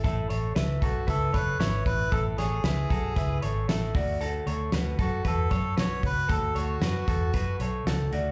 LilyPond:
<<
  \new Staff \with { instrumentName = "Clean electric guitar" } { \time 4/4 \key a \major \tempo 4 = 115 <e' a'>8 <a' cis''>8 <e' b'>8 <fis' a'>8 <e' b'>8 <a' cis''>8 <e' b'>4 | <e' a'>8 <a' cis''>8 <e' b'>8 <fis' a'>8 <e' b'>8 <a' cis''>8 <e' a'>8 <d' fis'>8 | <fis' a'>8 <a' cis''>8 <fis' b'>8 <fis' a'>8 <fis' b'>8 <a' cis''>8 <fis' b'>4 | <fis' a'>8 <a' cis''>8 <fis' b'>8 <fis' a'>8 <fis' b'>8 <a' cis''>8 <fis' a'>8 <d' fis'>8 | }
  \new Staff \with { instrumentName = "Melodica" } { \time 4/4 \key a \major r4. fis'8 a'8 b'8 cis''8 b'8 | a'8 gis'2 r4. | r4. fis'8 a'4 cis''8 b'8 | a'8 fis'2 r4. | }
  \new Staff \with { instrumentName = "Fingered electric bass" } { \clef bass \time 4/4 \key a \major a,,8 a,,8 cis,8 b,,8 cis,8 fis,,8 gis,,8 a,,8 | a,,8 a,,8 cis,8 b,,8 cis,8 gis,,8 a,,8 d,8~ | d,8 d,8 d,8 fis,8 e,8 fis,8 b,,8 cis,8 | d,8 d,8 fis,8 e,8 fis,8 b,,8 cis,8 d,8 | }
  \new DrumStaff \with { instrumentName = "Drums" } \drummode { \time 4/4 <hh bd>8 hh8 <hh sn>8 <hh bd>8 <hh bd>8 <hh bd>8 <hh sn>8 <hho bd>8 | <hh bd>8 <hh sn>8 <hh sn>8 <hh bd>8 <hh bd>8 hh8 <hh sn>8 <hho bd>8 | hh8 hh8 <hh sn>8 <hh bd>8 <hh bd>8 <hh bd>8 <hh sn>8 <hho bd>8 | <hh bd>8 hh8 <hh sn>8 <hh bd>8 <hh bd>8 hh8 <hh sn>8 hh8 | }
>>